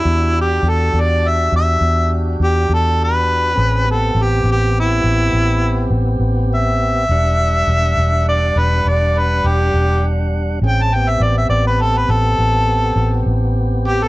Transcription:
<<
  \new Staff \with { instrumentName = "Harmonica" } { \time 12/8 \key e \minor \tempo 4. = 68 e'8 g'8 a'8 d''8 e''8 e''4 r8 g'8 a'8 b'4~ | b'8 a'8 g'8 g'8 e'2 r4 e''4~ | e''2 d''8 b'8 d''8 b'8 g'4 r4 | g''16 a''16 g''16 e''16 d''16 e''16 d''16 b'16 a'16 b'16 a'2 r4 g'16 a'16 | }
  \new Staff \with { instrumentName = "Tonewheel organ" } { \time 12/8 \key e \minor <d' fis' g'>1. | <c' cis' gis'>8 <b c' g'>1~ <b c' g'>4. | <g d' fis''>1. | <c' cis' gis'>8 <b c' g'>1~ <b c' g'>4. | }
  \new Staff \with { instrumentName = "Fingered electric bass" } { \clef bass \time 12/8 \key e \minor e,4 e,8 e,4 e,8 e,4 e,8 e,4. | a,,4 a,,8 a,,4 a,,8 a,,4 a,,8 a,,4. | e,,4 e,,8 e,,4 e,,8 e,,4 e,,8 e,,4. | a,,4 a,,8 a,,4 a,,8 a,,4 a,,8 a,,4. | }
>>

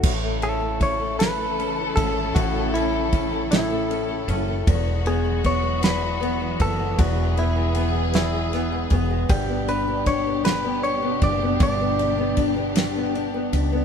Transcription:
<<
  \new Staff \with { instrumentName = "Clean electric guitar" } { \time 6/8 \key a \major \tempo 4. = 52 r8 a'8 cis''8 b'4 a'8 | fis'8 e'4 e'4 r8 | r8 gis'8 cis''8 b'4 a'8 | fis'8 e'4 e'4 r8 |
g'8 b'8 cis''8 b'8 cis''8 d''8 | d''4 r2 | }
  \new Staff \with { instrumentName = "Nylon-string guitar" } { \time 6/8 \key a \major a,16 a16 cis'16 a16 cis'16 a8 a16 cis'16 a16 cis'16 a16 | a,16 a16 cis'16 a16 cis'16 a16 a,16 a16 cis'16 a16 cis'16 a16 | e,16 gis16 b16 gis16 b16 gis16 e,16 gis16 b16 gis16 b16 gis16 | e,16 gis16 b16 gis16 b16 gis16 e,16 gis16 b16 gis16 b16 gis16 |
g,16 b16 d'16 b16 d'16 b8 b16 d'16 b16 d'16 b16 | g,16 b16 d'16 b16 d'16 b16 g,16 b16 d'16 b16 d'16 b16 | }
  \new Staff \with { instrumentName = "String section" } { \time 6/8 \key a \major << { <a a'>2.~ | <a a'>2. | fis'2. | gis'2. |
<g g'>2.~ | <g g'>2. | } \\ { <cis e e'>2.~ | <cis e e'>2. | <e fis b>2.~ | <e fis b>2. |
<b, d'>2.~ | <b, d'>2. | } >> }
  \new Staff \with { instrumentName = "Fretless electric bass" } { \clef bass \time 6/8 \key a \major a,,2~ a,,8 gis,,8 | a,,2~ a,,8 fis,,8 | e,,2~ e,,8 fis,,8 | e,,2~ e,,8 e,,8 |
g,,2~ g,,8 fis,,8 | g,,2~ g,,8 cis,8 | }
  \new DrumStaff \with { instrumentName = "Drums" } \drummode { \time 6/8 <cymc bd>8 cymr8 <bd cymr>8 <cymr sn>8 cymr8 <bd cymr>8 | <bd cymr>8 cymr8 <bd cymr>8 <cymr sn>8 cymr8 cymr8 | <bd cymr>8 cymr8 <bd cymr>8 <cymr sn>8 cymr8 <bd cymr>8 | <bd cymr>8 cymr8 cymr8 <cymr sn>8 <cymr sn>8 <bd cymr>8 |
<bd cymr>8 cymr8 <bd cymr>8 <cymr sn>8 cymr8 <bd cymr>8 | <bd cymr>8 cymr8 <bd cymr>8 <cymr sn>8 cymr8 cymr8 | }
>>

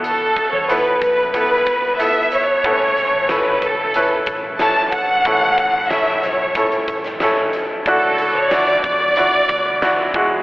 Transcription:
<<
  \new Staff \with { instrumentName = "Violin section" } { \time 4/4 \key a \major \tempo 4 = 92 a'8. cis''16 b'8 b'8 b'4 e''8 cis''8~ | cis''4 b'8 a'4 r8 a''8 fis''8~ | fis''4 e''8 cis''4 r4. | a'8. cis''16 d''8 d''2 r8 | }
  \new Staff \with { instrumentName = "Upright piano" } { \time 4/4 \key a \major <b e' a'>8 r8 <b e' a'>8. r16 <b e' a'>8. r16 <b e' a'>8. r16 | <b cis' e' a'>8. r16 <cis' e' a'>8. r16 <cis' e' b'>8. r16 <cis' e' a'>8. r16 | <cis' e' a'>8. r16 <cis' e' a'>8. r16 <cis' e' a'>8. r16 <cis' e' a'>8. r16 | <d' e' fis'>8. r16 <d' e' fis'>8. r16 <d' e' fis'>8. r16 <d' e' fis'>8 <gis e' fis'>8 | }
  \new Staff \with { instrumentName = "Upright piano" } { \clef bass \time 4/4 \key a \major b,4 r2. | <a, e>4. r2 r8 | <a, e>4. r2 r8 | a,4. r2 b,8 | }
  \new Staff \with { instrumentName = "Fingered electric bass" } { \clef bass \time 4/4 \key a \major e,8 r16 e,8. fis,4 e,4. | a,,8. a,,8. cis,4 a,,4 r8 | a,,8. a,,8. b,,4 a,,4. | d,8. d,8. e,4 d,4 e,8 | }
  \new DrumStaff \with { instrumentName = "Drums" } \drummode { \time 4/4 hh8 <hh bd>8 hh8 <hh bd>8 <hh bd>8 <hh bd>8 hh8 hh8 | <hh bd>8 hh8 <hh sn>8 <hh bd>8 hh8 <hh bd>8 <hh sn>8 <hh bd>8 | <hh bd>8 <hh bd>8 <hh sn>8 hh8 <hh bd>16 hh16 <hh bd>16 <hh sn>16 <hh sn>8 hh8 | <hh bd>8 hh8 <hh sn>8 <hh bd>8 hh8 <hh bd>8 <hh sn>8 <hh bd>8 | }
>>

